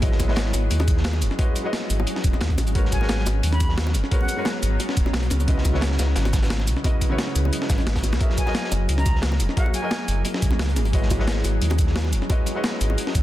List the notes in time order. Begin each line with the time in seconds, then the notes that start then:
Already playing: G#1 F#3 C#4 G#4 D#5
0.02 G#3 E4 F#4 B4 C#5 D#5, kick, closed hi-hat
0.12 snare
0.20 kick, closed hi-hat, high bongo, shaker
0.28 G#3 E4 F#4 B4 C#5 D#5, snare
0.36 snare, closed hi-hat
0.46 snare
0.53 G#1, closed hi-hat, high bongo, shaker
0.71 D#2, closed hi-hat, shaker
0.79 snare, closed hi-hat, high bongo
0.88 kick, closed hi-hat, shaker
0.97 snare
1.04 snare, closed hi-hat
1.13 snare, high bongo
1.21 F#1, closed hi-hat, shaker
1.31 snare
1.38 G#3 E4 F#4 B4 C#5 D#5, kick, closed hi-hat, high bongo
1.55 closed hi-hat, shaker
1.64 G#3 E4 F#4 B4 C#5 D#5
1.73 snare, closed hi-hat, high bongo
1.90 G#1, closed hi-hat, shaker
2.00 high bongo
2.07 closed hi-hat, shaker
2.16 snare
2.24 D#1, kick, closed hi-hat, shaker
2.33 snare, high bongo
2.41 D#2, snare, closed hi-hat
2.50 kick, closed hi-hat
2.58 G#1, snare, closed hi-hat, high bongo, shaker
2.67 closed hi-hat, shaker
2.75 G#3 B3 C#4 F#4 A#4 B4 C#5 A#5, kick, closed hi-hat
2.85 snare
2.92 G#5, kick, closed hi-hat, shaker
3.00 G#3 F#4 A#4 B4 C#5, snare, high bongo
3.09 snare, closed hi-hat
3.19 snare
3.26 G#1, closed hi-hat, high bongo, shaker
3.43 D#2, closed hi-hat, shaker
3.52 B5, snare, closed hi-hat
3.60 kick, closed hi-hat, high bongo, shaker
3.69 snare
3.78 snare, closed hi-hat
3.87 snare, high bongo
3.94 F#1, closed hi-hat, shaker
4.04 snare
4.11 G#3 F#4 A#4 B4 C#5, kick, closed hi-hat
4.21 F#5, high bongo
4.28 closed hi-hat, shaker
4.37 G#3 F#4 A#4 B4 C#5
4.45 snare, closed hi-hat, high bongo
4.63 G#1, closed hi-hat, shaker
4.80 closed hi-hat, high bongo, shaker
4.89 snare
4.97 D#1, kick, closed hi-hat, shaker
5.06 snare, high bongo
5.13 B1, snare, closed hi-hat
5.23 closed hi-hat
5.30 C#2, snare, closed hi-hat, shaker
5.40 closed hi-hat, high bongo, shaker
5.47 C#3 G#3 E4 F#4 B4 D#5, kick, closed hi-hat
5.58 snare
5.64 kick, closed hi-hat, high bongo, shaker
5.73 C#3 G#3 E4 F#4 B4 C#5, snare
5.81 snare, closed hi-hat
5.92 snare
5.99 C#2, snare, closed hi-hat, high bongo, shaker
6.16 G#1, snare, closed hi-hat, shaker
6.25 snare, closed hi-hat, high bongo
6.33 kick, snare, closed hi-hat, shaker
6.43 snare, closed hi-hat
6.50 snare, closed hi-hat
6.60 snare, high bongo
6.67 B1, closed hi-hat, shaker
6.76 snare
6.84 C#3 G#3 E4 F#4 B4 D#5, kick, closed hi-hat, high bongo
7.01 kick, closed hi-hat, shaker
7.09 C#3 G#3 E4 F#4 B4 C#5
7.18 snare, closed hi-hat, high bongo
7.28 snare
7.35 C#2, closed hi-hat, shaker
7.45 high bongo
7.53 closed hi-hat, shaker
7.62 snare
7.70 G#1, kick, snare, closed hi-hat, shaker
7.78 snare, closed hi-hat, high bongo
7.86 G#1, snare, closed hi-hat
7.96 kick, snare, closed hi-hat
8.03 G#1, closed hi-hat, high bongo, shaker
8.13 C#2, snare, shaker
8.20 F#3 A#3 E4 F#4 G#4 A#4 E5, kick, closed hi-hat
8.30 snare
8.38 G#5, kick, closed hi-hat, shaker
8.46 F#3 F#4 G#4 A#4 D#5, snare, high bongo
8.55 snare, closed hi-hat
8.64 snare
8.71 F#1, closed hi-hat, high bongo, shaker
8.89 C#2, closed hi-hat, shaker
8.98 A#5, snare, closed hi-hat
9.06 kick, closed hi-hat, high bongo, shaker
9.15 snare
9.22 snare, closed hi-hat
9.32 snare, high bongo
9.40 E1, closed hi-hat, shaker
9.49 snare
9.57 F#3 F#4 G#4 A#4 E5 F#5, kick, closed hi-hat
9.66 high bongo
9.74 G#5, closed hi-hat, shaker
9.82 F#3 F#4 G#4 A#4 D#5
9.91 snare, closed hi-hat, high bongo
10.08 F#1, closed hi-hat, shaker
10.25 closed hi-hat, high bongo, shaker
10.34 snare
10.42 C#2, kick, closed hi-hat, shaker
10.50 snare, high bongo
10.59 C#2, snare, closed hi-hat
10.68 closed hi-hat
10.76 G#1 C#4 D#5, snare, closed hi-hat, shaker
10.85 closed hi-hat, high bongo
10.93 G#3 E4 F#4 B4 C#5 D#5, kick, closed hi-hat
11.02 snare
11.10 kick, closed hi-hat, high bongo, shaker
11.18 G#3 E4 F#4 B4 C#5 D#5, snare
11.27 snare, closed hi-hat
11.37 snare
11.44 G#1, closed hi-hat, high bongo, shaker
11.62 D#2, closed hi-hat, shaker
11.70 snare, closed hi-hat, high bongo
11.79 kick, closed hi-hat, shaker
11.87 snare
11.96 snare, closed hi-hat
12.05 snare, high bongo
12.13 F#1, closed hi-hat, shaker
12.22 snare
12.29 G#3 E4 F#4 B4 C#5 D#5, kick, closed hi-hat, high bongo
12.46 closed hi-hat, shaker
12.55 G#3 E4 F#4 B4 C#5 D#5
12.64 snare, closed hi-hat, high bongo
12.81 G#1, closed hi-hat, shaker
12.90 high bongo
12.98 closed hi-hat, shaker
13.07 snare
13.15 D#2, kick, closed hi-hat, shaker